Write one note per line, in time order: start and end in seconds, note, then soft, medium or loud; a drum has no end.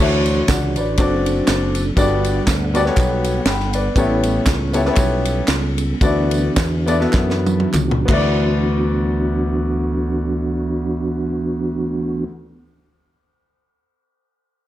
0.00 0.41 D2 loud
0.00 0.72 D3 medium
0.00 0.97 E3 medium
0.00 0.41 A3 medium
0.00 0.42 D4 medium
0.00 1.95 D4 medium
0.00 0.42 E4 medium
0.00 0.42 F#4 medium
0.00 0.97 F#4 medium
0.00 0.97 C#5 medium
0.00 0.42 C#5 loud
0.00 tambourine medium
0.26 ride medium
0.26 tambourine soft
0.48 0.77 C#2 medium
0.48 0.75 D5 medium
0.48 0.75 F#5 medium
0.48 kick medium
0.48 snare loud
0.48 clap loud
0.48 ride medium
0.48 tambourine loud
0.76 0.95 A1 loud
0.76 1.23 B4 medium
0.76 0.98 D5 medium
0.76 ride medium
0.76 tambourine medium
0.97 1.40 F#1 loud
0.97 1.96 F#3 medium
0.97 1.79 C4 loud
0.97 1.96 C4 medium
0.97 1.80 D4 medium
0.97 1.80 F#4 medium
0.97 1.95 A4 medium
0.97 1.80 A4 medium
0.97 1.80 D5 loud
0.97 kick loud
0.97 clap medium
0.97 ride medium
0.97 tambourine medium
1.26 ride medium
1.26 tambourine medium
1.47 1.90 F#1 medium
1.47 snare loud
1.47 clap medium
1.47 ride medium
1.47 tambourine medium
1.75 ride medium
1.75 tambourine medium
1.96 2.39 G1 loud
1.96 2.70 G2 medium
1.96 3.93 G3 medium
1.96 8.04 B3 medium
1.96 2.40 B3 medium
1.96 2.40 F#4 medium
1.96 2.40 G4 medium
1.96 5.96 A4 medium
1.96 2.40 A4 medium
1.96 2.40 D5 loud
1.96 3.93 F#5 medium
1.96 kick loud
1.96 ride medium
1.96 tambourine medium
2.24 ride medium
2.24 tambourine medium
2.47 2.89 D2 medium
2.47 kick medium
2.47 snare loud
2.47 clap loud
2.47 ride medium
2.47 tambourine loud
2.74 2.80 B3 loud
2.74 2.80 F#4 medium
2.74 2.81 G4 medium
2.74 2.81 A4 medium
2.74 2.81 D5 loud
2.74 ride medium
2.74 tambourine medium
2.85 3.41 B3 loud
2.85 3.41 F#4 medium
2.85 3.41 G4 medium
2.85 3.41 A4 medium
2.85 3.41 C#5 loud
2.85 snare soft
2.96 3.39 B1 medium
2.96 kick loud
2.96 clap medium
2.96 ride medium
2.96 tambourine medium
3.24 ride medium
3.24 tambourine medium
3.45 3.88 G1 loud
3.45 3.73 G5 medium
3.45 3.72 B5 medium
3.45 snare loud
3.45 clap medium
3.45 ride medium
3.45 tambourine medium
3.60 snare soft
3.73 4.21 B4 medium
3.73 4.21 D5 medium
3.73 ride medium
3.73 tambourine medium
3.96 4.38 A1 medium
3.96 4.70 A2 medium
3.96 5.99 G3 medium
3.96 4.39 B3 medium
3.96 5.99 C#4 medium
3.96 4.39 E4 medium
3.96 4.39 G4 medium
3.96 4.39 A4 medium
3.96 4.40 C#5 loud
3.96 kick loud
3.96 ride medium
3.96 tambourine medium
4.23 ride medium
4.23 tambourine medium
4.46 4.89 C#2 loud
4.46 kick loud
4.46 snare loud
4.46 clap loud
4.46 ride medium
4.46 tambourine loud
4.73 4.79 B3 medium
4.73 4.80 E4 medium
4.73 4.80 G4 medium
4.73 4.80 A4 medium
4.73 4.80 C#5 loud
4.73 ride medium
4.73 tambourine medium
4.85 5.42 B3 loud
4.85 5.43 E4 medium
4.85 5.43 G4 medium
4.85 5.43 A4 medium
4.85 4.91 B4 medium
4.85 snare soft
4.93 5.46 C#5 loud
4.93 kick loud
4.93 clap medium
4.93 ride medium
4.93 tambourine medium
4.97 5.40 B1 loud
5.25 ride medium
5.25 tambourine medium
5.48 5.93 C#2 medium
5.48 snare loud
5.48 clap medium
5.48 ride medium
5.48 tambourine medium
5.78 ride medium
5.78 tambourine medium
6.01 6.48 D2 medium
6.01 6.84 D3 medium
6.01 8.07 E3 medium
6.01 6.48 B3 medium
6.01 8.07 D4 medium
6.01 6.49 E4 medium
6.01 8.07 F#4 medium
6.01 6.49 F#4 medium
6.01 6.49 A4 medium
6.01 6.49 D5 medium
6.01 kick loud
6.01 ride medium
6.01 tambourine medium
6.31 ride medium
6.31 tambourine medium
6.56 7.05 E2 loud
6.56 kick medium
6.56 snare loud
6.56 clap loud
6.56 ride medium
6.56 tambourine loud
6.86 6.94 B3 loud
6.86 6.94 E4 medium
6.86 6.95 F#4 medium
6.86 6.95 A4 medium
6.86 6.95 D5 loud
6.86 ride medium
6.86 tambourine medium
6.99 7.66 B3 medium
6.99 7.67 E4 medium
6.99 7.67 F#4 medium
6.99 7.67 A4 medium
6.99 7.67 E5 loud
6.99 snare soft
7.13 7.65 F#2 medium
7.13 kick loud
7.13 snare medium
7.13 clap medium
7.13 tambourine medium
7.30 snare medium
7.47 high tom medium
7.47 tambourine medium
7.60 high tom medium
7.73 8.04 C#2 medium
7.73 clap medium
7.73 mid tom medium
7.73 tambourine medium
7.91 mid tom medium
8.05 12.25 D2 medium
8.05 12.25 E3 medium
8.05 12.22 B3 loud
8.05 12.25 B3 medium
8.05 12.25 D4 medium
8.05 12.24 E4 medium
8.05 12.24 F#4 medium
8.05 kick loud
8.05 clap medium
8.05 crash medium
8.10 12.27 F#4 medium
8.10 12.29 D5 loud